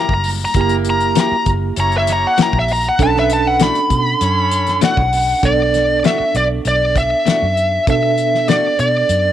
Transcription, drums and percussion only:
0.09 kick medium
0.24 open hi-hat medium
0.54 kick medium
0.54 closed hi-hat medium
0.69 closed hi-hat soft
0.85 closed hi-hat medium
1.00 closed hi-hat soft
1.15 snare loud
1.15 closed hi-hat medium
1.46 kick medium
1.46 closed hi-hat medium
1.76 closed hi-hat medium
1.92 closed hi-hat soft
2.07 snare soft
2.07 closed hi-hat medium
2.38 snare loud
2.38 closed hi-hat medium
2.53 kick medium
2.68 open hi-hat medium
2.84 closed hi-hat soft
2.99 kick loud
2.99 closed hi-hat medium
3.16 snare soft
3.30 closed hi-hat medium
3.60 snare loud
3.60 closed hi-hat medium
3.75 closed hi-hat soft
3.90 kick medium
3.90 closed hi-hat medium
4.21 closed hi-hat medium
4.51 closed hi-hat medium
4.67 snare soft
4.67 closed hi-hat soft
4.81 snare loud
4.81 closed hi-hat medium
4.97 kick medium
5.13 open hi-hat medium
5.43 kick loud
5.43 closed hi-hat medium
5.74 snare soft
5.74 closed hi-hat medium
6.04 snare loud
6.04 closed hi-hat medium
6.35 closed hi-hat medium
6.65 closed hi-hat medium
6.96 kick medium
6.96 closed hi-hat medium
7.27 snare loud
7.27 closed hi-hat medium
7.57 closed hi-hat medium
7.87 kick medium
7.87 closed hi-hat medium
8.18 closed hi-hat medium
8.34 snare soft
8.48 snare medium
8.48 closed hi-hat medium
8.79 closed hi-hat medium
9.09 closed hi-hat medium

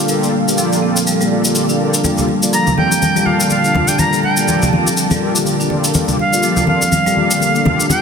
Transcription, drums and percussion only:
0.08 shaker medium
0.23 shaker soft
0.48 shaker medium
0.58 shaker medium
0.73 shaker soft
0.96 shaker medium
1.07 shaker medium
1.21 shaker soft
1.45 shaker medium
1.55 shaker medium
1.69 shaker soft
1.94 shaker medium
2.04 muted conga soft
2.04 high conga medium
2.04 shaker medium
2.18 low conga medium
2.18 shaker soft
2.29 muted conga soft
2.43 shaker medium
2.53 shaker medium
2.67 muted conga soft
2.67 low conga medium
2.67 shaker soft
2.78 high conga medium
2.92 muted conga soft
2.92 shaker medium
3.02 high conga medium
3.02 shaker medium
3.16 muted conga soft
3.16 shaker soft
3.26 high conga medium
3.40 shaker medium
3.50 muted conga soft
3.50 shaker medium
3.64 shaker soft
3.75 muted conga soft
3.75 high conga medium
3.75 low conga medium
3.88 shaker medium
3.99 muted conga soft
3.99 high conga medium
3.99 shaker medium
4.13 shaker soft
4.23 muted conga soft
4.37 shaker medium
4.48 high conga medium
4.48 shaker medium
4.62 muted conga medium
4.62 low conga medium
4.62 shaker soft
4.73 high conga medium
4.86 muted conga soft
4.86 shaker medium
4.97 shaker medium
5.11 muted conga medium
5.11 high conga medium
5.11 shaker soft
5.36 shaker medium
5.45 muted conga soft
5.45 shaker medium
5.60 shaker soft
5.70 muted conga medium
5.84 shaker medium
5.94 muted conga medium
5.94 high conga medium
5.94 shaker medium
6.08 low conga medium
6.08 shaker soft
6.19 muted conga soft
6.33 shaker medium
6.43 shaker medium
6.56 muted conga soft
6.56 low conga medium
6.56 shaker soft
6.67 high conga medium
6.82 muted conga soft
6.82 shaker medium
6.92 high conga medium
6.92 shaker medium
7.06 muted conga soft
7.06 shaker soft
7.17 high conga medium
7.31 shaker medium
7.40 muted conga soft
7.40 shaker medium
7.55 shaker soft
7.65 muted conga medium
7.65 high conga loud
7.65 low conga loud
7.80 shaker medium
7.90 muted conga medium
7.90 high conga loud
7.90 shaker medium

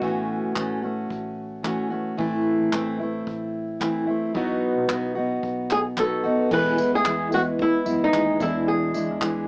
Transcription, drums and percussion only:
0.02 kick loud
0.56 kick loud
0.56 clap loud
1.10 kick loud
1.64 kick medium
1.64 clap medium
2.19 kick loud
2.73 kick loud
2.73 clap loud
3.27 kick medium
3.81 kick loud
3.81 clap medium
4.35 kick loud
4.89 kick loud
4.89 clap loud
5.43 kick loud
5.71 clap medium
5.97 kick medium
5.97 clap medium
6.51 kick loud
6.51 crash loud
6.78 tambourine medium
7.05 kick loud
7.05 clap loud
7.32 tambourine medium
7.59 kick loud
7.86 tambourine medium
8.13 kick loud
8.13 clap medium
8.40 kick loud
8.40 tambourine medium
8.94 tambourine medium
9.21 kick loud
9.21 clap loud

